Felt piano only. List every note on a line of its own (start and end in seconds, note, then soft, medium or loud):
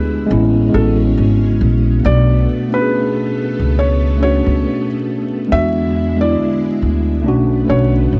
0.00 0.26 B4 medium
0.74 0.96 A4 medium
2.06 2.69 D5 medium
2.74 3.74 B4 medium
3.79 4.18 C#5 medium
4.23 4.86 C#5 medium
5.52 6.16 E5 loud
6.21 7.22 D5 medium
7.70 7.91 C#5 medium